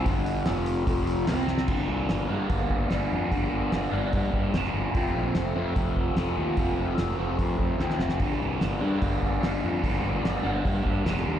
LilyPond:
<<
  \new Staff \with { instrumentName = "Overdriven electric guitar" } { \clef bass \time 4/4 \key g \minor \tempo 4 = 147 <g, d g>4 <f, c f>4 <f, c f>4 <c g c'>4 | <g, d g bes d'>4. <g, d g bes d'>4. <g, d g bes d'>4 | <g, d g bes d'>4. <g, d g bes d'>4. <g, d g bes d'>4 | <f, c f a c'>4. <f, c f a c'>4. <f, c f a c'>4 |
<f, c f a c'>4. <f, c f a c'>4. <f, c f a c'>4 | <g, d g bes d'>4. <g, d g bes d'>4. <g, d g bes d'>4 | <g, d g bes d'>4. <g, d g bes d'>4. <g, d g bes d'>4 | }
  \new Staff \with { instrumentName = "Fingered electric bass" } { \clef bass \time 4/4 \key g \minor g,,4 f,,4 f,,4 c,4 | g,,8 c,8 g,,8 g,8 g,,4 g,,8 f,8 | g,,8 g,,8 g,,8 g,,8 g,8 g,8 f,,8 g,,8 | f,,8 bes,,8 f,,8 f,8 f,,4 f,,8 ees,8 |
f,,8 f,,8 f,,8 f,,8 f,8 f,8 ees,8 f,,8 | g,,8 c,8 g,,8 g,8 g,,4 g,,8 f,8 | g,,8 g,,8 g,,8 g,,8 g,8 g,8 f,,8 ees,8 | }
  \new DrumStaff \with { instrumentName = "Drums" } \drummode { \time 4/4 <hho bd>8 hho8 <hho sn>8 hho8 <hho bd>8 hho8 <hho sn>8 sn16 sn16 | <cymc bd>4 <hho sn>4 <hho bd>8 bd8 <hho sn>4 | <hho bd>4 <hho sn>4 <hho bd>8 bd8 <hho sn>16 sn8. | <hho bd>4 <hho sn>4 <hho bd>8 bd8 <hho sn>4 |
<hho bd>4 <hho sn>4 <hho bd>8 bd8 sn16 sn16 sn16 sn16 | <hho bd>4 <hho sn>4 <hho bd>8 bd8 <hho sn>4 | <hho bd>4 <hho sn>4 <hho bd>8 bd8 <hho sn>16 sn8. | }
>>